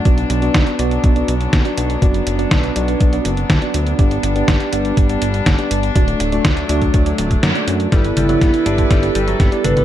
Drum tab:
HH |xxxxxxxxxxxxxxxx|xxxxxxxxxxxxxxxx|xxxxxxxxxxxxxxxx|xxxxxxxxxxxxxxxx|
SD |----o-------o---|----o-------o---|----o-------o---|----o-------o---|
CG |----------------|----------------|----------------|----------------|
BD |o---o---o---o---|o---o---o---o---|o---o---o---o---|o---o--oo--o----|

HH |xxxxxxxxxxxxxxxx|
SD |o---o---o---o---|
CG |--o-----------oo|
BD |o---o--oo---o---|